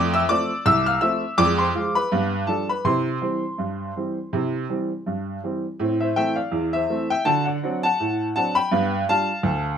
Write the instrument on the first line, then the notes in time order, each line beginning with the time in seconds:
upright piano
Already playing: F2 A3 D5 D6
0.14 E5 E6
0.29 F3 A3 C4 D5 D6
0.66 C2 E5 E6
0.86 F5 F6
1.01 F3 A3 C4 E5 E6
1.38 F2 G#3 D5 D6
1.58 C5 C6
1.75 F3 G#3 F4
1.95 B4 B5
2.12 G2 B3
2.47 F3 G3 D4 A4 A5
2.69 B4 B5
2.85 C3 E4 C5 C6
3.21 E3 G3 C4
3.58 G2
3.96 E3 G3 C4
4.33 C3 E4
4.69 E3 G3 C4
5.06 G2
5.43 E3 G3 C4
5.80 A2 C4
6.00 C5 E5
6.16 E3 A3 C4 E5 G5
6.36 D5 F5
6.51 E2
6.73 C5 E5
6.90 E3 A3 C4
7.10 E5 G5
7.25 D3 F#4 F#5 A5
7.45 D5 F#5
7.63 F#3 C4 D4
7.83 F#5 A5
8.00 A2
8.36 F#3 C4 D4 F#5 A5
8.55 G5 B5
8.71 G2 B3
9.09 G3 D4 F4 F5 A5
9.43 D2